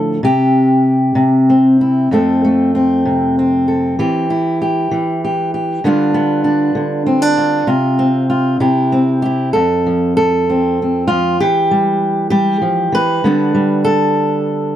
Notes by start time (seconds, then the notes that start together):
Already playing: A2 D3 F3 A4
0.23 C3 G4
1.15 C3
1.50 C4
1.81 E4
2.11 F2 F3 A3 C4 A4
2.44 A3
2.75 C4
3.05 C3
3.39 C4
3.68 A4
3.99 E3 G4
4.30 E4
4.62 G4
4.91 E3
5.24 G4
5.54 G4
5.84 D3 G3 B3 D4 F4
6.14 B3
6.44 D4
6.75 D3
7.06 C4
7.22 D4
7.37 F4
7.67 C3 F4
7.99 C4
8.30 F4
8.60 C3 E4 G4
8.92 C4
9.22 E4 G4
9.53 F2 A4
9.86 F3
10.17 A4
10.50 C4
10.82 C4
11.08 F3 F4
11.40 E3 G4
11.71 G3
12.30 G3 G4
12.62 F3
12.92 E3 B4
13.24 D3 G3 B3 D4
13.55 G3
13.85 A4